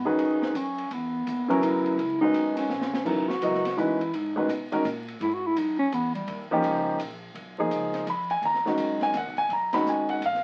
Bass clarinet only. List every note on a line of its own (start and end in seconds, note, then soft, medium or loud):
0.06 0.58 D#4 loud
0.56 0.94 C#4 medium
0.93 1.49 B3 medium
1.49 1.65 C#4 medium
1.64 2.20 E4 medium
2.21 2.58 D#4 loud
2.56 3.08 C#4 loud
3.07 3.30 D#4 loud
3.28 3.80 F#4 loud
3.78 4.16 E4 medium
4.15 4.73 D#4 medium
5.22 5.36 E4 medium
5.34 5.48 F#4 medium
5.47 5.59 E4 medium
5.57 5.78 D#4 medium
5.79 5.95 C#4 loud
5.94 6.14 B3 loud
6.14 6.48 G3 medium